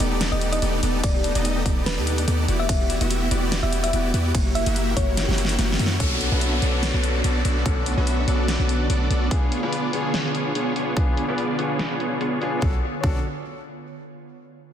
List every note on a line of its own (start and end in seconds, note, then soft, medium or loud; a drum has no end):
0.00 0.30 D#1 loud
0.00 0.11 A3 medium
0.00 0.29 B3 medium
0.00 0.27 D#4 medium
0.00 0.29 D#4 medium
0.00 1.19 F4 medium
0.00 0.32 G4 medium
0.00 0.29 G4 medium
0.00 0.29 A4 medium
0.00 0.29 D5 loud
0.00 closed hi-hat medium
0.11 0.62 A3 medium
0.21 0.41 D4 medium
0.21 snare loud
0.21 closed hi-hat medium
0.21 ride soft
0.32 0.60 D#1 loud
0.32 0.60 B3 medium
0.32 0.60 D#4 medium
0.32 0.60 G4 medium
0.32 1.14 G4 medium
0.32 0.60 A4 medium
0.32 0.60 D5 medium
0.32 0.41 D#5 medium
0.41 0.52 D4 loud
0.41 closed hi-hat medium
0.52 0.73 D4 loud
0.52 0.94 D#5 loud
0.52 closed hi-hat medium
0.62 0.81 D#1 loud
0.62 0.94 A3 loud
0.62 0.81 B3 loud
0.62 0.81 D#4 medium
0.62 0.81 G4 medium
0.62 0.81 A4 medium
0.62 0.81 D5 loud
0.62 closed hi-hat medium
0.73 0.83 D4 medium
0.83 1.02 D#1 loud
0.83 1.01 B3 medium
0.83 1.24 D4 medium
0.83 1.01 D#4 medium
0.83 1.01 G4 medium
0.83 1.01 A4 medium
0.83 1.01 D5 medium
0.83 closed hi-hat medium
0.94 1.03 A3 medium
1.03 1.33 D#1 loud
1.03 1.45 A3 medium
1.03 1.45 D5 medium
1.03 kick loud
1.03 closed hi-hat medium
1.03 ride soft
1.15 1.97 G4 medium
1.24 1.41 D4 loud
1.24 closed hi-hat medium
1.35 1.64 D#1 loud
1.35 1.63 B3 medium
1.35 1.63 D#4 medium
1.35 1.56 D#4 medium
1.35 1.63 G4 medium
1.35 1.63 A4 medium
1.35 1.63 D#5 medium
1.35 closed hi-hat medium
1.45 1.65 A3 loud
1.45 closed hi-hat medium
1.56 1.92 D#4 medium
1.66 1.99 D#1 loud
1.66 1.76 A3 medium
1.66 1.95 D#4 medium
1.66 1.95 G4 medium
1.66 1.95 D5 loud
1.66 kick medium
1.66 closed hi-hat medium
1.77 2.27 A3 medium
1.86 2.07 D4 medium
1.86 1.97 B4 medium
1.86 snare loud
1.86 closed hi-hat medium
1.86 ride soft
1.97 2.26 D#2 loud
1.97 2.25 B3 medium
1.97 2.25 D#4 medium
1.97 2.25 G4 medium
1.97 2.80 G4 medium
1.97 2.25 A4 medium
1.97 2.25 D5 medium
2.07 2.18 D4 loud
2.07 closed hi-hat medium
2.18 2.38 D4 loud
2.18 closed hi-hat medium
2.28 2.46 D#2 loud
2.28 4.41 A3 loud
2.28 2.46 B3 loud
2.28 2.46 D#4 medium
2.28 2.46 G4 medium
2.28 2.46 A4 medium
2.28 2.46 D5 loud
2.28 closed hi-hat medium
2.39 5.19 D4 medium
2.48 2.67 E1 loud
2.48 2.67 B3 medium
2.48 2.67 E4 medium
2.48 2.89 E4 medium
2.48 2.67 F#4 medium
2.48 2.67 G4 medium
2.48 2.67 D5 medium
2.48 closed hi-hat medium
2.60 2.69 B3 medium
2.60 3.01 E5 medium
2.69 2.99 E1 loud
2.69 2.98 B3 medium
2.69 3.10 B3 medium
2.69 2.98 E4 medium
2.69 2.98 F#4 medium
2.69 2.98 G4 medium
2.69 2.98 D5 medium
2.69 kick loud
2.69 closed hi-hat medium
2.69 ride soft
2.80 3.07 G4 medium
2.90 3.51 E4 loud
2.90 closed hi-hat medium
3.01 3.29 E1 loud
3.01 3.29 B3 medium
3.01 3.29 E4 medium
3.01 3.29 F#4 medium
3.01 3.21 F#4 medium
3.01 3.29 G4 medium
3.01 3.29 E5 medium
3.01 closed hi-hat medium
3.10 3.31 B3 loud
3.10 closed hi-hat medium
3.22 3.69 F#4 medium
3.31 3.61 E1 loud
3.31 3.60 B3 medium
3.31 3.42 B3 medium
3.31 3.60 E4 medium
3.31 3.60 F#4 medium
3.31 3.60 G4 medium
3.31 3.60 D5 loud
3.31 closed hi-hat medium
3.42 3.93 B3 medium
3.52 3.72 E4 medium
3.52 snare loud
3.52 closed hi-hat medium
3.52 ride soft
3.63 3.91 E1 loud
3.63 3.91 B3 medium
3.63 3.91 E4 medium
3.63 3.91 F#4 medium
3.63 3.91 G4 medium
3.63 4.45 G4 medium
3.63 3.91 D5 medium
3.63 3.72 E5 medium
3.73 3.83 E4 loud
3.73 closed hi-hat medium
3.83 4.04 E4 loud
3.83 4.25 E5 medium
3.83 closed hi-hat medium
3.93 4.12 E1 loud
3.93 4.12 B3 loud
3.93 4.25 B3 loud
3.93 4.12 E4 medium
3.93 4.12 F#4 medium
3.93 4.12 G4 medium
3.93 4.12 D5 loud
3.93 closed hi-hat medium
4.04 4.14 E4 medium
4.14 4.33 E2 loud
4.14 4.32 B3 medium
4.14 4.32 E4 medium
4.14 4.55 E4 medium
4.14 4.32 F#4 medium
4.14 4.32 G4 medium
4.14 4.32 D5 medium
4.14 closed hi-hat medium
4.25 4.41 B3 medium
4.35 4.64 F#1 loud
4.35 4.76 A#3 medium
4.35 kick loud
4.35 closed hi-hat medium
4.35 ride medium
4.46 4.72 G4 medium
4.55 5.17 E4 loud
4.55 4.66 E5 medium
4.55 closed hi-hat medium
4.66 4.95 F#1 loud
4.66 4.94 A#3 medium
4.66 4.94 E4 medium
4.66 4.87 F#4 medium
4.66 4.94 F#4 medium
4.66 4.94 G4 medium
4.66 4.94 E5 medium
4.66 closed hi-hat medium
4.76 4.96 A#3 loud
4.76 closed hi-hat medium
4.87 5.34 F#4 medium
4.96 5.26 F#1 loud
4.96 5.07 A#3 medium
4.96 5.26 A#3 medium
4.96 5.26 E4 medium
4.96 5.26 F#4 medium
4.96 5.28 C#5 loud
4.96 5.26 C#5 loud
4.96 kick medium
4.96 closed hi-hat medium
5.08 5.58 A#3 medium
5.17 5.38 E4 medium
5.17 snare medium
5.17 closed hi-hat medium
5.17 ride soft
5.28 5.57 F#1 loud
5.28 5.56 A#3 medium
5.28 5.56 E4 medium
5.28 5.56 F#4 medium
5.28 7.64 G4 medium
5.28 5.56 G4 medium
5.28 5.56 C#5 medium
5.28 snare medium
5.38 5.49 E4 loud
5.38 closed hi-hat medium
5.45 snare medium
5.49 5.69 E4 loud
5.49 closed hi-hat medium
5.59 5.77 F#1 loud
5.59 5.77 A#3 loud
5.59 5.90 A#3 loud
5.59 5.77 E4 medium
5.59 5.77 F#4 medium
5.59 5.77 G4 medium
5.59 5.77 C#5 loud
5.59 snare medium
5.59 closed hi-hat medium
5.70 5.79 E4 medium
5.70 snare loud
5.79 5.98 F#2 loud
5.79 5.98 A#3 medium
5.79 5.98 E4 medium
5.79 8.41 E4 medium
5.79 5.98 F#4 medium
5.79 5.98 G4 medium
5.79 5.98 C#5 loud
5.79 closed hi-hat medium
5.86 snare loud
5.91 9.12 A#3 medium
5.99 6.30 B1 loud
5.99 12.58 D3 medium
5.99 9.28 A3 medium
5.99 12.58 B3 medium
5.99 6.29 B3 medium
5.99 6.29 C#4 medium
5.99 6.29 D4 medium
5.99 9.28 F#4 medium
5.99 6.29 F#4 medium
5.99 6.29 A4 medium
5.99 6.30 A4 medium
5.99 kick loud
5.99 closed hi-hat medium
5.99 downlifter medium
6.21 closed hi-hat medium
6.31 6.60 B1 loud
6.31 6.60 B3 medium
6.31 6.59 C#4 medium
6.31 6.60 D4 medium
6.31 6.60 F#4 medium
6.31 6.60 A4 medium
6.31 6.60 B4 medium
6.31 6.60 E5 medium
6.41 closed hi-hat medium
6.60 6.92 B1 loud
6.60 6.91 B3 medium
6.60 7.62 C#4 medium
6.60 7.63 D4 medium
6.60 6.91 D4 medium
6.60 6.91 F#4 medium
6.60 7.64 F#4 medium
6.60 6.91 A4 medium
6.60 6.91 D5 medium
6.60 closed hi-hat medium
6.64 7.64 A4 medium
6.83 snare loud
6.83 closed hi-hat medium
6.94 7.22 B1 loud
6.94 7.22 B3 medium
6.94 7.22 D4 medium
6.94 7.22 F#4 medium
6.94 7.22 A4 medium
6.94 7.22 D5 medium
7.04 closed hi-hat medium
7.24 7.43 B1 loud
7.24 7.43 B3 loud
7.24 7.43 D4 medium
7.24 7.43 F#4 medium
7.24 7.43 A4 medium
7.24 7.43 D5 loud
7.24 closed hi-hat medium
7.45 7.64 B1 loud
7.45 7.63 B3 medium
7.45 7.63 D4 medium
7.45 7.63 F#4 medium
7.45 7.63 A4 medium
7.45 7.63 D5 medium
7.45 closed hi-hat medium
7.65 7.95 B1 loud
7.65 7.95 B3 medium
7.65 7.94 C#4 medium
7.65 7.95 D4 medium
7.65 7.95 F#4 medium
7.65 7.95 A4 medium
7.65 kick loud
7.65 closed hi-hat medium
7.86 closed hi-hat medium
7.96 8.26 B1 loud
7.96 8.25 B3 medium
7.96 8.24 C#4 medium
7.96 8.25 D4 medium
7.96 8.25 F#4 medium
7.96 8.26 F#4 medium
7.96 8.25 A4 medium
7.96 8.26 B4 medium
7.96 8.25 E5 medium
8.07 closed hi-hat medium
8.26 8.57 B1 medium
8.26 8.57 B3 medium
8.26 9.28 C#4 medium
8.26 9.28 D4 medium
8.26 8.57 D4 medium
8.26 8.57 F#4 medium
8.26 9.29 F#4 medium
8.26 8.57 A4 medium
8.26 8.57 D5 medium
8.26 closed hi-hat medium
8.30 9.30 A4 medium
8.48 snare loud
8.48 closed hi-hat medium
8.59 8.88 B1 loud
8.59 8.87 B3 medium
8.59 8.87 D4 medium
8.59 8.87 F#4 medium
8.59 8.87 A4 medium
8.59 8.87 D5 medium
8.69 closed hi-hat medium
8.90 9.08 B1 loud
8.90 9.08 B3 medium
8.90 9.08 D4 medium
8.90 9.08 F#4 medium
8.90 9.08 A4 medium
8.90 9.08 D5 loud
8.90 closed hi-hat medium
9.10 9.29 B1 loud
9.10 9.29 B3 medium
9.10 9.29 D4 medium
9.10 9.29 F#4 medium
9.10 9.29 A4 medium
9.10 9.29 D5 medium
9.10 closed hi-hat medium
9.30 9.60 B3 medium
9.30 9.60 D4 medium
9.30 9.60 F4 medium
9.30 12.59 F4 loud
9.30 9.60 F4 medium
9.30 9.60 G#4 medium
9.30 9.61 G#4 medium
9.30 9.60 C#5 medium
9.30 12.59 C#5 medium
9.30 kick loud
9.30 closed hi-hat medium
9.52 closed hi-hat medium
9.62 9.90 B3 medium
9.62 9.91 B3 medium
9.62 9.91 D4 medium
9.62 9.91 F4 medium
9.62 9.91 G#4 medium
9.62 9.91 B4 medium
9.62 9.91 D5 medium
9.73 closed hi-hat medium
9.91 10.93 B3 medium
9.91 10.22 B3 medium
9.91 10.94 D4 medium
9.91 10.22 D4 medium
9.91 10.22 F4 medium
9.91 10.95 F4 medium
9.91 10.22 G#4 medium
9.91 10.95 G#4 medium
9.91 10.22 C#5 loud
9.91 closed hi-hat medium
10.14 snare loud
10.14 closed hi-hat medium
10.25 10.53 B3 medium
10.25 10.53 D4 medium
10.25 10.53 F4 medium
10.25 10.53 G#4 medium
10.25 10.53 C#5 medium
10.35 closed hi-hat medium
10.55 10.74 B3 medium
10.55 10.74 D4 medium
10.55 10.74 F4 medium
10.55 10.74 G#4 medium
10.55 10.74 C#5 loud
10.55 closed hi-hat medium
10.76 10.94 B3 medium
10.76 10.94 D4 medium
10.76 10.94 F4 medium
10.76 10.94 G#4 medium
10.76 10.94 C#5 medium
10.76 closed hi-hat medium
10.96 11.25 B3 medium
10.96 11.26 D4 medium
10.96 11.26 F4 medium
10.96 11.26 G#4 loud
10.96 kick loud
10.96 closed hi-hat medium
11.17 closed hi-hat medium
11.28 11.55 B3 medium
11.28 11.56 B3 medium
11.28 11.56 D4 medium
11.28 11.56 F4 medium
11.28 11.57 F4 medium
11.28 11.56 G#4 medium
11.28 11.57 B4 medium
11.28 11.56 D5 medium
11.38 closed hi-hat medium
11.57 12.39 B3 medium
11.57 11.88 B3 medium
11.57 12.39 D4 medium
11.57 11.88 D4 medium
11.57 11.88 F4 medium
11.57 12.40 F4 medium
11.57 11.88 G#4 medium
11.57 11.88 C#5 medium
11.57 closed hi-hat medium
11.61 12.41 G#4 medium
11.79 snare loud
11.79 closed hi-hat medium
11.90 12.18 B3 medium
11.90 12.18 D4 medium
11.90 12.18 F4 medium
11.90 12.18 G#4 medium
11.90 12.18 C#5 medium
12.00 closed hi-hat medium
12.21 12.39 B3 loud
12.21 12.39 D4 medium
12.21 12.39 F4 medium
12.21 12.39 G#4 medium
12.21 12.39 C#5 loud
12.21 closed hi-hat medium
12.41 12.59 B3 loud
12.41 12.60 B3 medium
12.41 12.60 D4 medium
12.41 12.60 F4 medium
12.41 12.60 G#4 medium
12.41 12.60 G#4 loud
12.41 12.60 C#5 medium
12.41 closed hi-hat medium
12.59 12.74 B1 loud
12.59 12.73 C#4 medium
12.59 12.74 D4 medium
12.59 12.74 A4 medium
12.59 12.74 D5 medium
12.59 kick loud
12.63 12.75 F#4 medium
12.63 12.76 A4 medium
13.01 13.23 B1 loud
13.01 13.19 B3 medium
13.01 13.18 C#4 medium
13.01 13.19 D4 medium
13.01 13.19 F#4 medium
13.01 13.20 F#4 medium
13.01 13.19 A4 medium
13.01 13.19 D5 medium
13.01 kick loud
13.07 13.21 A4 loud